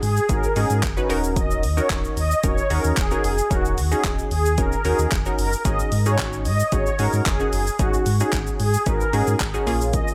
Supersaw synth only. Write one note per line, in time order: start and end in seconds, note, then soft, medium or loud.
0.03 0.25 G#4 medium
0.29 0.52 A#4 medium
0.56 0.68 G#4 loud
1.37 1.48 D#5 loud
1.78 1.88 C#5 medium
2.17 2.39 D#5 medium
2.44 2.66 C#5 medium
2.71 2.83 A#4 medium
2.98 3.36 G#4 medium
3.51 3.63 F#4 loud
3.92 4.02 G#4 medium
4.32 4.54 G#4 medium
4.58 4.80 A#4 medium
4.84 4.96 G#4 medium
5.38 5.50 A#4 medium
5.65 5.77 D#5 loud
6.06 6.17 C#5 medium
6.45 6.68 D#5 medium
6.72 6.94 C#5 medium
6.99 7.11 A#4 medium
7.26 7.64 G#4 medium
7.79 7.91 F#4 loud
8.20 8.31 G#4 medium
8.60 8.82 G#4 medium
8.87 9.09 A#4 medium
9.13 9.25 G#4 loud
9.94 10.05 D#5 loud